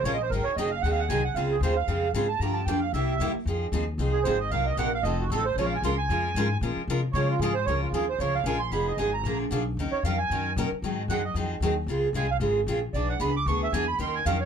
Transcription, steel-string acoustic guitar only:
0.05 F3 G#3 C#4 F4 A#4
0.32 D#3 F#3 C4 D#4 G#4
0.58 D#3 F#3 C4 D#4 G#4
0.84 D#3 F#3 C4 D#4 G#4
1.10 D#3 F#3 C4 D#4 G#4
1.36 C#3 G#3 C4 F4 G#4
1.63 C#3 G#3 C4 F4 G#4
1.88 C#3 G#3 C4 F4 G#4
2.15 C#3 G#3 C4 F4 G#4
2.41 D3 F3 A#3 D4 G4
2.68 D3 F3 A#3 D4 G4
2.94 C3 G3 A#3 E4 G4
3.20 C3 G3 A#3 E4 G4
3.47 F3 C4 D#4 G#4
3.73 F3 C4 D#4 G#4
3.99 F3 C4 D#4 G#4
4.25 F3 C4 D#4 G#4
4.51 C3 F#3 A#3 D#4 A#4
4.77 C3 F#3 A#3 D#4 A#4
5.05 F3 C4 D#4 A4
5.32 F3 C4 D#4 A4
5.58 F3 G#3 C#4 F4 A#4
5.83 F3 G#3 C#4 F4 A#4
6.10 F3 G#3 C#4 F4 A#4
6.36 F3 G#3 C#4 F4 A#4
6.62 F3 G#3 C#4 F4 A#4
6.90 F3 G#3 C#4 F4 A#4
7.15 F3 G#3 C#4 F4 A#4
7.42 F3 G#3 C#4 F4 A#4
7.68 F3 G#3 C#4 F4 A#4
7.94 F3 G#3 C#4 F4 A#4
8.20 F3 G#3 C#4 F4 A#4
8.46 F3 G#3 C#4 F4 A#4
8.72 F3 B3 D#4 G#4
8.98 F3 B3 D#4 G#4
9.25 D3 F3 A#3 D4 G#4
9.51 D3 F3 A#3 D4 G#4
9.79 D#3 F#3 C#4 D#4 A#4
10.05 D#3 F#3 C#4 D#4 A#4
10.31 D#3 F#3 C#4 D#4 A#4
10.57 D#3 F#3 C#4 D#4 A#4
10.84 D#3 F#3 C4 D#4 G#4
11.10 D#3 F#3 C4 D#4 G#4
11.36 D#3 F#3 C4 D#4 G#4
11.62 D#3 F#3 C4 D#4 G#4
11.88 C#3 G#3 C4 F4 G#4
12.14 C#3 G#3 C4 F4 G#4
12.40 C#3 G#3 C4 F4 G#4
12.68 C#3 G#3 C4 F4 G#4
12.94 E3 B3 D4 G#4
13.20 E3 B3 D4 G#4
13.47 E3 B3 D4 G#4
13.74 E3 B3 D4 G#4
13.99 D#3 F#3 C#4 D#4 A#4
14.26 D#3 F#3 C#4 D#4 A#4

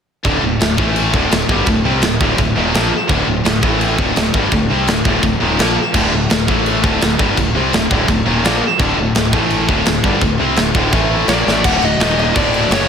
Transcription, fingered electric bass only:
0.25 D1
0.43 D1
0.60 D1
0.78 A1
1.14 D1
1.33 D1
1.48 G1
1.66 D1
1.85 C2
2.04 D1
2.20 D1
2.38 D1
2.57 D#1
2.74 A#1
2.93 muted fingered electric bass stroke
3.09 D1
3.27 D1
3.45 D1
3.63 A1
3.98 D1
4.16 D1
4.34 G1
4.52 D1
4.70 C2
4.87 D1
5.05 D1
5.23 D1
5.41 D#1
5.59 A#1
5.78 muted fingered electric bass stroke
5.94 D1
6.13 D1
6.31 D1
6.49 A1
6.83 D1
7.03 D1
7.20 G1
7.38 D1
7.56 C2
7.73 D1
7.91 D1
8.08 D1
8.26 D#1
8.44 A#1
8.61 muted fingered electric bass stroke
8.79 D1
8.98 D1
9.15 D1
9.33 A1
9.68 D1
9.87 D1
10.04 G1
10.21 D1
10.40 C2
10.58 D1
10.74 D1
10.93 A1
11.28 A#1
11.47 A1
11.64 D1
11.81 D1
11.99 D#1
12.36 D1
12.70 F#1

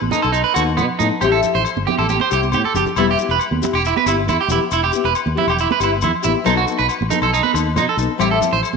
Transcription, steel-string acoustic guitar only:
0.12 B3 D#4 A4
0.56 B3 D#4 A4
0.99 B3 D#4 A4
1.22 C4 E4 G4
1.44 E4 G4
1.87 E4 G4
2.31 E4 G4
2.75 G4
2.97 G3 B3 E4 G4
3.18 B3 E4 G4
3.62 E4 G4
4.07 B3 E4 G4
4.50 B3 G4
4.92 B3 E4 G4
5.35 B3 E4 G4
5.80 B3 E4 G4
6.22 B3 E4 G4
6.44 F#3 B3 D#4 A4
6.66 B3 D#4 A4
7.10 B3 D#4 A4
7.53 D#4 A4, muted steel-string acoustic guitar stroke
7.96 B3 D#4 A4
8.18 G3 C4 E4, muted steel-string acoustic guitar stroke
8.40 C4 E4 A4

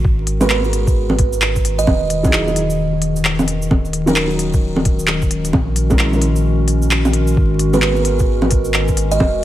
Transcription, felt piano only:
0.40 G#3 B3 F#4 A#4
0.60 G#3 B3
0.65 F#4 A#4
2.23 F#3 D#4 E4 G#4
2.46 F#3 D#4 E4
2.50 G#4
4.06 F#3 C#4 D#4 A#4
4.27 F#3 C#4
4.32 D#4 A#4
5.90 G#3 C#4 E4 A#4
6.12 G#3 C#4 E4 A#4
7.73 G#3 B3 F#4 A#4
7.94 G#3 B3
7.99 F#4 A#4

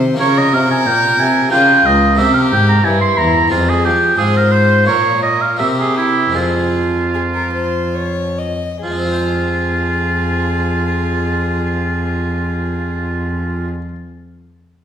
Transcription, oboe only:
0.20 C#5
0.38 D#5
0.54 F5
0.71 G#5
0.87 G5
1.20 G#5
1.51 G5
1.86 D#5
2.18 E5
2.34 F5
2.52 G5
2.69 A#5
2.85 G#5
3.01 C6
3.18 A#5
3.51 F4
3.70 G#4
3.85 G4
4.18 G#4
4.36 A#4
4.52 C5
4.87 C#5
5.23 D#5
5.41 F5
5.59 E5
5.79 G#4
5.97 E4
6.35 F4
8.83 F4

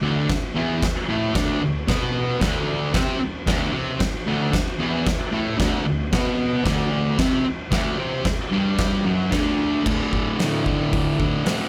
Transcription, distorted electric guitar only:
0.02 D2 D3
0.29 muted distorted electric guitar stroke
0.54 E2 E3
1.08 A2 A3
1.35 D2 D3
1.62 D2
1.87 B2 B3
2.41 D2 D3
2.94 C3 C4
3.20 muted distorted electric guitar stroke
3.47 D2 D3
3.73 C3 C4
4.01 muted distorted electric guitar stroke
4.27 D2 D3
4.53 muted distorted electric guitar stroke
4.79 E2 E3
5.32 A2 A3
5.58 D2 D3
5.86 D2
6.12 B2 B3
6.65 D2 D3
7.19 C3 C4
7.45 muted distorted electric guitar stroke
7.71 D2 D3
7.98 C3 C4
8.26 muted distorted electric guitar stroke
8.52 G2 G3
9.05 F#2 F#3
9.32 D2 D3
9.84 D2 A2
9.89 D3
10.38 D2 A2
10.43 D3
10.64 D3
10.70 A2
11.19 D3
11.24 A2
11.44 D2 A2
11.49 D3

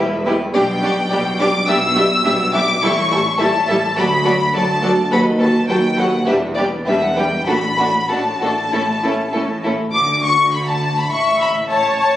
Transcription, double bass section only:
Already playing: E1
0.55 B1
1.12 B1
1.68 B1
2.25 B1
2.82 A1
3.40 A1
3.97 D2
4.54 D2
5.11 D#2
5.69 D#2
6.27 E1
6.87 E1
7.48 A1
8.11 A1
8.73 A1
9.34 A1
9.95 D2
11.12 A1

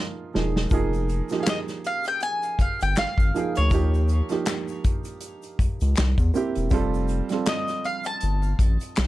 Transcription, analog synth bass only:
0.36 E1
0.72 F1
2.60 G1
2.83 G1
2.99 G#1
3.19 G#1
3.58 D2
3.72 D#2
5.60 C#2
5.82 C#2
5.99 C2
6.19 E2
6.57 E1
6.72 F1
8.23 G1
8.60 A1
8.99 B1

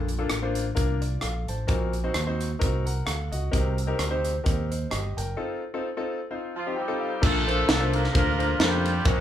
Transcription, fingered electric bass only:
Already playing: A#1
0.31 A1
0.77 C2
1.23 A#1
1.49 A1
1.69 A#1
2.15 D#2
2.62 C2
3.07 D2
3.32 C#2
3.53 C2
3.99 D2
4.46 D#2
4.92 G1
5.17 F#1
7.23 A#1
7.68 C2
8.15 D2
8.60 F2
9.06 A#1

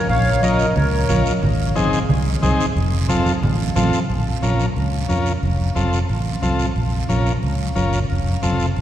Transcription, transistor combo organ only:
0.43 C#4 F4 A#4
1.09 C#4 F4 A#4
1.75 C4 D#4 G#4
2.42 C4 D#4 G#4
3.09 C4 F4 A4
3.76 C4 F4 A4
4.42 C#4 F4 A#4
5.09 C#4 F4 A#4
5.75 C4 F4 A4
6.42 C4 F4 A4
7.09 C#4 F4 A#4
7.75 C#4 F4 A#4
8.43 C4 F4 A4

